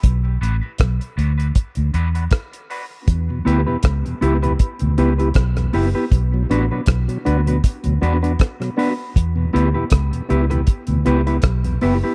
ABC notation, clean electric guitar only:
X:1
M:4/4
L:1/16
Q:"Swing 16ths" 1/4=79
K:Bm
V:1 name="Clean electric guitar"
z2 [B,DFB] [B,DFB] z2 [B,DFB] [B,DFB] z2 [B,DFB] [B,DFB] z2 [B,DFB] z | z2 [B,EGB] [B,EGB] z2 [B,EGB] [B,EGB] z2 [B,EGB] [B,EGB] z2 [B,EGB] [B,EGB] | z2 [B,DFB] [B,DFB] z2 [B,DFB] [B,DFB] z2 [B,DFB] [B,DFB] z2 [B,DFB] z | z2 [B,EGB] [B,EGB] z2 [B,EGB] [B,EGB] z2 [B,EGB] [B,EGB] z2 [B,EGB] [B,EGB] |]